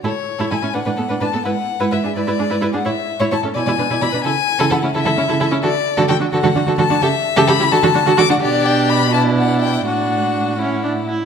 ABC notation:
X:1
M:6/8
L:1/16
Q:3/8=86
K:A
V:1 name="Violin"
c4 g2 f4 a2 | f4 e2 d4- d f | e4 a2 g4 b2 | g4 f2 e4- e z |
[K:D] d4 g2 f4 a2 | e4 b2 a4 d' f | d2 g2 b2 a2 f2 g2 | f8- f2 z2 |]
V:2 name="Violin"
A z2 A A E B B A B B A | B z2 B B G B B G B B G | c z2 c c A d d B d d B | A z2 A A E A A E A A E |
[K:D] A z2 A A F A A F A A F | A z2 A A G A A F A A F | G6 E6 | F6 E4 z2 |]
V:3 name="Viola"
E z2 E E C D D B, D D B, | E z2 E E D E E D E E D | E z2 E E C E E D E E D | E z2 E E C E E C E E C |
[K:D] F z2 F F D F F D F F D | G z2 G G E F F D F F D | D6 D6 | D6 C2 D2 E2 |]
V:4 name="Cello" clef=bass
A,, z2 A,, A,, A,, A,, A,, A,, A,, A,, A,, | G,, z2 G,, G,, G,, G,, G,, G,, G,, G,, G,, | A,, z2 A,, A,, A,, B,, B,, B,, B,, B,, B,, | C, z2 C, C, C, C, C, C, C, C, C, |
[K:D] D, z2 D, D, D, D, D, D, D, D, D, | C, z2 C, C, C, D, D, D, D, D, D, | B,,12 | A,,8- A,,2 z2 |]